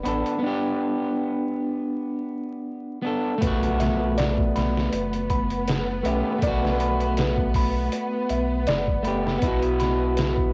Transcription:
0.03 sub bass A1, clean electric guitar B3 D4, music box B5, closed hi-hat, tabla na
0.08 clean electric guitar A4
0.25 closed hi-hat, tabla na
0.38 clean electric guitar B3
0.43 clean electric guitar D4
0.47 clean electric guitar G4
3.02 clean electric guitar B3 D4
3.07 clean electric guitar A4
3.38 clean electric guitar A3 B3
3.42 sub bass B1, string section B3, music box B4, kick, closed hi-hat, impact
3.47 clean electric guitar F#4
3.63 closed hi-hat
3.80 music box E5, snare, closed hi-hat
4.17 music box D5, snare, closed hi-hat
4.38 kick
4.55 music box B5, snare, closed hi-hat
4.77 snare
4.93 sub bass F#1, music box B4, closed hi-hat
5.13 closed hi-hat
5.30 music box B5, kick, closed hi-hat
5.50 closed hi-hat
5.67 music box B4, snare, closed hi-hat
6.03 sub bass B1, clean electric guitar A3 B3 C#4, music box E5, closed hi-hat
6.07 clean electric guitar G4
6.38 clean electric guitar A3 B3, kick, closed hi-hat
6.42 sub bass B1, music box D5
6.47 clean electric guitar F#4
6.65 snare
6.80 music box B5, closed hi-hat
7.00 closed hi-hat
7.17 music box B4, snare, closed hi-hat
7.38 kick
7.54 music box B5, kick, open hi-hat
7.92 music box B4, closed hi-hat
8.29 sub bass B1, music box E5, closed hi-hat
8.67 sub bass F#1, music box D5, snare, closed hi-hat
8.88 kick
9.03 sub bass F#1, clean electric guitar A3 B3, music box B5, closed hi-hat
9.07 clean electric guitar G4
9.27 snare
9.39 sub bass B1, clean electric guitar B3, music box B4, kick, closed hi-hat
9.43 clean electric guitar E4
9.47 clean electric guitar F#4
9.62 closed hi-hat
9.80 music box B5, snare, closed hi-hat
10.17 music box B4, snare, closed hi-hat
10.38 kick

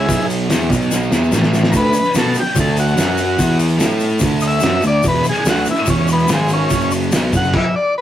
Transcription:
Already playing: transistor combo organ E4 G#4
0.08 picked electric bass B1, distorted electric guitar B2 F#3 B3, kick, open hi-hat, shaker
0.30 open hi-hat, shaker
0.48 picked electric bass E2, distorted electric guitar E3 B3 E4, snare, open hi-hat, shaker
0.61 shaker
0.70 picked electric bass B1, distorted electric guitar B2 F#3 B3, kick, open hi-hat, shaker
0.82 shaker
0.91 snare, shaker
1.11 picked electric bass E2, distorted electric guitar E3 B3 E4, snare, shaker
1.23 shaker
1.32 picked electric bass A1, distorted electric guitar A2 E3 A3, snare, shaker
1.43 snare, shaker
1.53 snare, shaker
1.64 snare, shaker
1.72 picked electric bass D2, distorted electric guitar D3 A3 D4, transistor combo organ A#4, kick, open hi-hat, shaker
1.77 transistor combo organ B4
1.93 muted distorted electric guitar stroke, muted picked electric bass stroke, open hi-hat, shaker
2.04 shaker
2.14 picked electric bass B2, distorted electric guitar B3 F#4 B4, snare, open hi-hat, shaker
2.18 transistor combo organ A4
2.34 muted distorted electric guitar stroke, muted picked electric bass stroke, open hi-hat, shaker
2.40 transistor combo organ G4
2.54 picked electric bass D2, distorted electric guitar D3 A3 D4, kick, open hi-hat, shaker
2.60 transistor combo organ A4
2.77 transistor combo organ F#4, open hi-hat, shaker
2.87 shaker
2.96 picked electric bass F#2, distorted electric guitar F#3 C#4 F#4, snare, open hi-hat, shaker
3.17 open hi-hat, shaker
3.38 picked electric bass E2, distorted electric guitar E3 B3 E4, kick, open hi-hat, shaker
3.59 open hi-hat, shaker
3.69 shaker
3.78 picked electric bass A2, distorted electric guitar A3 E4 A4, snare, open hi-hat, shaker
4.00 open hi-hat, shaker
4.09 shaker
4.19 picked electric bass D2, distorted electric guitar D3 A3 D4, kick, open hi-hat, shaker
4.40 transistor combo organ D#5, open hi-hat, shaker
4.47 transistor combo organ E5
4.60 picked electric bass F#2, distorted electric guitar F#3 C#4 F#4, snare, open hi-hat, shaker
4.81 picked electric bass D2, distorted electric guitar D3 A3, open hi-hat, shaker
4.87 transistor combo organ D5
5.03 picked electric bass E1, distorted electric guitar E2 B2 E3, kick, open hi-hat, shaker
5.08 transistor combo organ B4
5.24 muted distorted electric guitar stroke, muted picked electric bass stroke, open hi-hat, shaker
5.29 transistor combo organ G#4
5.34 shaker
5.45 picked electric bass D2, distorted electric guitar D3 A3 D4, snare, open hi-hat, shaker
5.50 transistor combo organ F#4
5.65 muted picked electric bass stroke, muted distorted electric guitar stroke, open hi-hat, shaker
5.71 transistor combo organ E4
5.76 shaker
5.86 picked electric bass E1, distorted electric guitar E2 B2 E3, transistor combo organ C#4, kick, open hi-hat, shaker
6.08 open hi-hat, shaker
6.13 transistor combo organ B3
6.19 shaker
6.28 picked electric bass G#1, distorted electric guitar G#2 D#3 G#3, snare, open hi-hat, shaker
6.34 transistor combo organ G#3
6.49 open hi-hat, shaker
6.54 transistor combo organ C#4
6.70 picked electric bass F#1, distorted electric guitar F#2 C#3 F#3, kick, open hi-hat, shaker
6.81 shaker
6.91 open hi-hat, shaker
7.02 shaker
7.12 picked electric bass B1, distorted electric guitar B2 F#3 B3, snare, open hi-hat, shaker
7.33 picked electric bass F#1, distorted electric guitar F#2 C#3 F#3, transistor combo organ F#5, kick, open hi-hat, shaker
7.44 shaker
7.53 transistor combo organ E5, kick, crash
7.76 transistor combo organ D5
7.98 transistor combo organ B4

